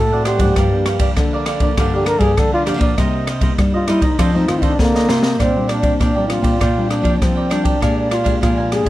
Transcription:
Already playing: A2 A4
0.12 A3 C4 F#4 C5 D5 F#5
0.25 D4 G4 C5 D5 F#5, cross-stick, ride
0.37 G#2 F3 A#3 D4 D5 F#5, kick, ride
0.42 C5
0.56 G2 G4 A#4 D5 F5, kick, cross-stick, ride
0.73 F3 A#3 D4
0.85 G4 A#4 D5 F5, cross-stick, ride
0.99 G4 A#4 D5 F5, kick, ride
1.17 D3 F3 A#3 D4, kick, cross-stick, ride
1.33 A#4 D5 F5
1.45 G4 A#4 D5 F5, cross-stick, ride
1.60 F3 A#3 D4 A#4 D5 F5, kick, ride
1.77 G2 D3 F3 A#3 D4 G4 A#4 D5 F5, kick, cross-stick, ride
1.94 G4 A#4 D5 F5
2.06 A#4, cross-stick, ride
2.19 G2 F3 A#3 D4 G4 G#4 A#4 D5 F5, kick, ride
2.38 D3 A4, kick, cross-stick, ride
2.54 F4 A#4 D5 F5
2.66 F3 A#3 D4 G4 A#4 D5 F5, cross-stick, ride
2.79 A#2 A#4 D5 F5, kick, ride
2.98 C3 G3 A#3 D#4 A#4 C5 D#5, kick, cross-stick, ride
3.27 D#4 A#4 C5 D#5, cross-stick, ride
3.41 G3 A#3 D#4 A#4 C5 D#5, kick, ride
3.58 G2 G3, kick, cross-stick, ride
3.74 F4 A#4 C5 D#5
3.88 G3 A#3 D#4 E4 A#4 C5 D#5, cross-stick, ride
4.02 D#4 A#4 C5 D#5, kick, ride
4.18 F2 D#3 F3 A3 C4 D4 F4 A4 C5 D#5, kick, cross-stick, ride
4.35 D#3 A3 C4 D#4 A4 C5 D#5
4.48 D#3 F4, cross-stick, ride
4.62 D4 F4 A4 C5 D#5, kick, ride
4.79 C3 D3 A#3 C4, kick, snare
4.95 A4 C5 D#5, snare
5.08 C3 F4 A4 C5 D#5, snare
5.22 A4 C5 D#5, snare
5.38 A#2 G3 C4 D4 A#4 D5 G5, kick, cross-stick, ride
5.56 G3 C4 D4
5.68 D4 A#4 D5 G5, cross-stick, ride
5.82 G3 C4 D4 A#4 D5 G5, kick, ride
6.00 A#2 F3 D4 A#4 D5 G5, kick, cross-stick, ride
6.15 G3 C4 D4 A#4 D5 G5
6.29 G3 C4 D4 F4, cross-stick, ride
6.42 A#2 A#4 D5 G5, kick, ride
6.60 A#2 D4 A#4 D5 G5, kick, cross-stick, ride
6.77 G3 C4 D4
6.89 D4 A#4 D5 G5, cross-stick, ride
7.02 F3 D4 A#4 D5 G5, kick, ride
7.14 D4
7.21 F3 G3 C4 D4, kick, cross-stick, ride
7.35 A#4 D5 G5
7.50 G3 C4 D4 A#4 D5 G5, cross-stick, ride
7.64 A#4 D5 G5, kick, ride
7.80 A#2 G#3 D4 G4 A#4 F5 G#5, kick, cross-stick, ride
8.10 D4 F4 A#4 F5 G#5, cross-stick, ride
8.24 G#3 D4 G4 A#4 F5 G#5, kick, ride
8.41 A#2 F3 D4 F4 A#4 F5 G#5, kick, cross-stick, ride
8.57 A#4 F5 G#5
8.72 G#3 D4 G4 G#4, cross-stick, ride
8.84 A#2 G#5

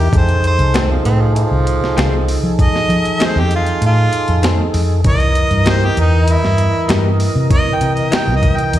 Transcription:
Already playing: G4
0.12 F2 D#4 G#4 A4, kick, closed hi-hat
0.17 C5
0.29 closed hi-hat
0.44 C5, closed hi-hat
0.59 C2, closed hi-hat
0.74 D#3 A3 C4 G#4, snare, closed hi-hat
0.91 F3
1.05 A2 C4, closed hi-hat
1.21 F3
1.35 F3, closed hi-hat
1.51 C2
1.67 closed hi-hat
1.84 snare
1.97 C2 D#3 A3 C4 G#4, snare, closed hi-hat
2.28 open hi-hat
2.43 F3
2.59 D#5, kick, closed hi-hat
2.76 snare
2.89 F3, closed hi-hat
3.05 closed hi-hat
3.20 D#3 A3 C4 G#4, snare, closed hi-hat
3.25 C5
3.36 F2
3.40 G4
3.51 closed hi-hat
3.55 F4
3.66 closed hi-hat
3.82 A2, closed hi-hat
3.86 F4
4.13 closed hi-hat
4.28 F2, closed hi-hat
4.43 D#3 A3 C4 G#4, snare, closed hi-hat
4.74 F2, open hi-hat
5.04 C2 E3 A#4 D#5, kick, closed hi-hat
5.20 closed hi-hat
5.35 closed hi-hat
5.51 G2, closed hi-hat
5.66 E3 A#3 D#4 G4, snare, closed hi-hat
5.70 C5
5.85 G4
5.97 E2 D#4, closed hi-hat
6.28 closed hi-hat
6.32 E4
6.44 G2, snare
6.58 closed hi-hat
6.89 G2 E3 A#3 D#4 G4, snare, closed hi-hat
7.20 open hi-hat
7.35 C3
7.51 D#5, kick, closed hi-hat
7.75 G5
7.81 C3, closed hi-hat
7.95 D#5, closed hi-hat
8.12 E3 A#3 D#4 G4, snare, closed hi-hat
8.16 G5
8.27 C2
8.36 D#5
8.43 kick, closed hi-hat
8.56 G5, closed hi-hat
8.73 E2, closed hi-hat

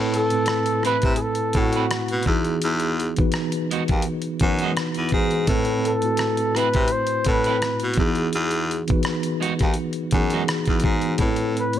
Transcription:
Already playing: A2 A3 C4 E4 B4
0.14 A4, closed hi-hat
0.30 A2 A3 C4 E4, closed hi-hat
0.35 B4
0.46 cross-stick, closed hi-hat
0.66 closed hi-hat
0.83 C3 C4 E4 B4, cross-stick, closed hi-hat
0.87 B4
1.02 C3, kick, closed hi-hat
1.16 G#4, closed hi-hat
1.22 A4
1.35 closed hi-hat
1.53 A2 A3 C4 E4 F#4, kick, closed hi-hat
1.58 F#4
1.73 B4, closed hi-hat
1.77 C4 E4
1.91 cross-stick, closed hi-hat
2.08 B2, closed hi-hat
2.23 E3 B3, kick, closed hi-hat
2.27 E2 D#4 F#4 G#4
2.45 closed hi-hat
2.62 E2, closed hi-hat
2.80 closed hi-hat
3.00 closed hi-hat
3.16 E3 B3 D#4 F#4 B4, kick, closed hi-hat
3.32 cross-stick, closed hi-hat
3.52 closed hi-hat
3.71 D#2 G#3 D#4 F#4, closed hi-hat
3.88 D#2, kick, closed hi-hat
4.02 closed hi-hat
4.22 closed hi-hat
4.40 F#2 E3 B3 D#4 F#4 B4, kick, closed hi-hat
4.59 F#4, closed hi-hat
4.63 G#3 D#4
4.77 cross-stick, closed hi-hat
4.94 E2, closed hi-hat
5.09 E3 B3, kick, closed hi-hat
5.13 G#2 D#4 F#4 G#4
5.31 closed hi-hat
5.46 A2 A3 C4 E4 B4, kick, closed hi-hat
5.65 closed hi-hat
5.85 A4, closed hi-hat
6.02 A2 A3 C4 E4 F#4, closed hi-hat
6.17 cross-stick, closed hi-hat
6.37 closed hi-hat
6.55 C3 C4 E4 B4, cross-stick, closed hi-hat
6.74 C3, kick, closed hi-hat
6.88 closed hi-hat
6.92 C5
7.07 closed hi-hat
7.25 A2 A3 C4 E4 B4, kick, closed hi-hat
7.29 B4
7.44 E4 B4, closed hi-hat
7.49 C4
7.62 cross-stick, closed hi-hat
7.80 B2, closed hi-hat
7.94 E3, kick, closed hi-hat
7.98 E2 B3 D#4 F#4 G#4
8.15 closed hi-hat
8.33 E2, closed hi-hat
8.51 closed hi-hat
8.71 closed hi-hat
8.88 E3 B3 D#4 F#4 B4, kick, closed hi-hat
9.03 cross-stick, closed hi-hat
9.23 closed hi-hat
9.41 D#2 G#3 D#4 F#4, closed hi-hat
9.59 D#2, kick, cross-stick, closed hi-hat
9.74 closed hi-hat
9.93 closed hi-hat
10.11 F#2 E3 B3 D#4 F#4, kick, closed hi-hat
10.16 G#4
10.30 D#4 F#4, closed hi-hat
10.35 G#3
10.48 cross-stick, closed hi-hat
10.66 E2, kick, closed hi-hat
10.80 E3, closed hi-hat
10.84 G#2 B3 D#4 F#4, kick
11.02 closed hi-hat
11.18 A2 A3 C4 E4, kick, closed hi-hat
11.22 B4
11.36 closed hi-hat
11.57 B4, closed hi-hat
11.73 A2 A3 B3, closed hi-hat

